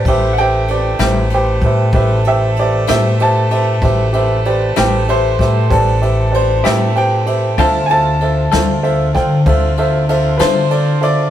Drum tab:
RD |xxxxxxxxxxxx|xxxxxxxxxxxx|xxxxxxxxxxxx|
SD |---o-----o--|---o-o---o--|---o-o---o--|
BD |o----oo-----|o----oo-----|o----oo-----|